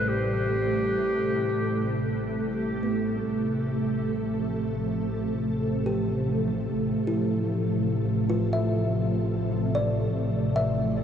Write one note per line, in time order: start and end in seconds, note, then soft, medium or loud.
0.00 3.27 A1 medium
0.00 11.04 C3 medium
0.00 3.32 G3 medium
0.00 11.04 A3 medium
0.00 3.32 E4 medium
0.00 11.04 A4 medium
0.08 2.24 G4 medium
2.51 3.27 G4 medium
2.83 6.26 B3 medium
3.31 11.04 A1 medium
3.44 11.04 F3 medium
5.86 7.24 G4 medium
7.07 8.46 E4 medium
8.30 11.04 F4 medium
8.53 9.91 E5 medium
9.75 10.72 D5 medium
10.56 11.04 E5 medium